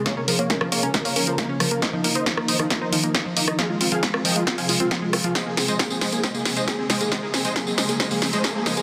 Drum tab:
HH |x-oxx-oxxooxx-ox|x-oxx-oxx-oxx-ox|x-oxx-oxxooxx-ox|x-oxx-oxx-oxx-ox|
TB |----------------|----------------|----------------|x-xxxxxxxxxx--xx|
SD |o---or--o---o-r-|o---or-ro---o--r|o---or--o---o-r-|o-o-o-o-o-o-o-o-|
BD |o---o---o---o---|o---o---o---o---|o---o---o---o---|o---o---o---o---|

HH |x-oxx-oxxooxx-ox|
TB |--xxxxxxxxxxx-xx|
SD |o-o-o-o-o-o-o-o-|
BD |o---o---o---o---|